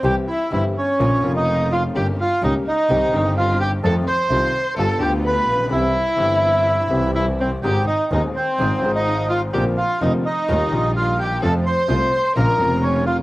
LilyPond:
<<
  \new Staff \with { instrumentName = "Bandoneon" } { \time 4/4 \key c \phrygian \tempo 4 = 127 <g' g''>8 <e' e''>8 <e' e''>8 <des' des''>4~ <des' des''>16 <ees' ees''>8. <f' f''>8 | <g' g''>8 <f' f''>8 <ees' ees''>8 <ees' ees''>4. <f' f''>8 <g' g''>8 | <a' a''>8 <c'' c'''>4. <a' a''>8 <g' g''>8 <b' b''>4 | <e' e''>2. <e' e''>8 <c' c''>8 |
<g' g''>8 <ees' ees''>8 <ees' ees''>8 <c' c''>4~ <c' c''>16 <ees' ees''>8. <f' f''>8 | <g' g''>8 <f' f''>8 <ees' ees''>8 <ees' ees''>4. <f' f''>8 <g' g''>8 | <a' a''>8 <c'' c'''>4. <bes' bes''>4 <des' des''>8 <f' f''>8 | }
  \new Staff \with { instrumentName = "Violin" } { \time 4/4 \key c \phrygian g'8 e'8 e'8 des'4~ des'16 ees'8. f'8 | g'8 f'8 ees'8 ees'4. f'8 g'8 | a'8 c''4. a'8 g'8 b'4 | e'2. e'8 c'8 |
g'8 ees'8 ees'8 c'4~ c'16 ees'8. f'8 | g'8 f'8 ees'8 ees'4. f'8 g'8 | a'8 c''4. bes'4 des'8 f'8 | }
  \new Staff \with { instrumentName = "String section" } { \time 4/4 \key c \phrygian <g c' e'>8 r8 <g c' e'>8 r8 <bes des' f'>8 <bes des' f'>4. | <bes des' g'>8 r8 <bes des' g'>8 r8 <c' ees' g'>8 <c' ees' g'>4. | <a ees' f'>8 r8 <a ees' f'>8 r8 <g b f'>8 <g b f'>4. | <g c' e'>8 r8 <g c' e'>4. <g c' e'>4. |
<aes c' ees'>8 r8 <aes c' ees'>8 r8 <aes c' f'>8 <aes c' f'>4. | <bes c' d'>8 r8 <bes c' d'>8 r8 <g ees' f'>8 <g ees' f'>4. | <a c' f'>8 r8 <a c' f'>8 r8 <bes des' f'>8 <bes des' f'>4. | }
  \new Staff \with { instrumentName = "Grand piano" } { \clef bass \time 4/4 \key c \phrygian << { <c, c e g c' g'>8 r8 <g,, g, e g c' g'>8 r8 <bes,, bes, des f bes f'>8 <f,, f, des f bes f'>4. | <g,, g, des g bes g'>8 r8 <des, des g bes g'>8 r8 <c, c ees g c' g'>8 <g,, g, ees g c' g'>4. | <f, ees f a c' f'>8 r8 <c, c ees a c' f'>8 r8 <g,, g, d g b f'>8 <d, d g b f'>4. | <c, c e g c' g'>8 r8 <g,, g, e g c' g'>4. <c, c e g c' g'>4. |
<aes,, aes, ees aes c' aes'>8 r8 <ees,, ees, ees aes c' aes'>8 r8 <aes,, aes, f aes c' aes'>8 <aes,, aes, f aes c' aes'>4. | <bes,, bes, d bes c' f'>8 r8 <f,, f, d bes c' f'>8 r8 <ees, ees g bes f'>8 <bes,, bes, ees g bes f'>4. | <f, c f a f'>8 r8 <c, c f a f'>8 r8 <bes,, bes, des f bes f'>8 <f,, f, des f bes f'>4. | } \\ { r1 | r1 | r2. r8 r32 a,,32 bes,,32 b,,32 | r1 |
r1 | r1 | r1 | } >> }
  \new Staff \with { instrumentName = "Double bass" } { \clef bass \time 4/4 \key c \phrygian c,8 r8 g,,8 r8 bes,,8 f,,4. | g,,8 r8 des,8 r8 c,8 g,,4. | f,8 r8 c,8 r8 g,,8 d,4 bes,,8 | c,8 r8 g,,4. c,4. |
aes,,8 r8 ees,8 r8 aes,,8 aes,,4. | bes,,8 r8 f,,8 r8 ees,8 bes,,4. | f,8 r8 c,8 r8 bes,,8 f,,4. | }
>>